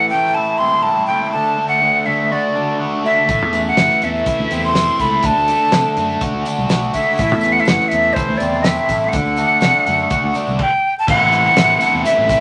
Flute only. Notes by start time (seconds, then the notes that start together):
0.09 G5
0.34 A5
0.58 C6
0.83 A5
1.07 G5
1.31 A5
1.69 F#5
2.06 E5
2.32 D5
3.06 E5
3.68 F#5
4.04 E5
4.64 C6
5.01 B5
5.26 A5
6.94 E5
7.52 F#5
7.60 E5
7.68 F#5
7.88 E5
8.13 C5
8.38 D5
8.61 E5
9.09 F#5
10.62 G5
10.99 A5
11.10 F#5
12.06 E5